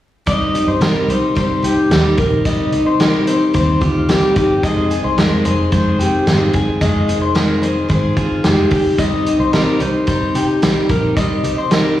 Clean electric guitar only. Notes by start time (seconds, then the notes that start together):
0.27 D#5
0.68 C5
0.82 A#4
1.10 C5
1.37 C5
1.64 G4
2.19 A#4
2.46 D#5
2.86 C5
3.00 A#4
3.28 C5
3.55 C5
3.82 F4
4.09 G4
4.37 G4
4.63 D#5
5.04 C5
5.18 A#4
5.45 C5
5.72 C5
5.99 G4
6.55 G#4
6.81 D#5
7.22 C5
7.35 A#4
7.62 C5
7.90 C5
8.17 F4
8.44 G4
8.72 G4
8.99 D#5
9.40 C5
9.53 A#4
9.80 C5
10.08 C5
10.35 G4
10.90 A#4
11.17 D#5
11.58 C5
11.72 A#4